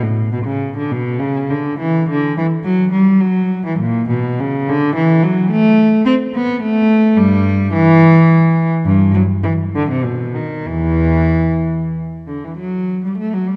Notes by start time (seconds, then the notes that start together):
0.03 A2
0.33 B2
0.45 C#3
0.77 D3
0.92 B2
1.19 C#3
1.50 D3
1.79 E3
2.10 D3
2.38 E3
2.64 F#3
2.92 G3
3.21 F#3
3.66 E3
3.79 A#2
4.08 B2
4.40 C#3
4.69 D3
4.96 E3
5.24 F#3
5.51 A3
6.06 C4
6.35 B3
6.62 A3
7.17 G2 G3
7.73 E3
8.85 G2
9.15 F#3
9.44 E3
9.75 D3
9.90 C3
10.04 B2
10.34 D#3
10.66 E2 E3
12.27 D3
12.44 E3
12.58 F#3
13.04 G3
13.18 A3
13.34 F#3
13.47 G3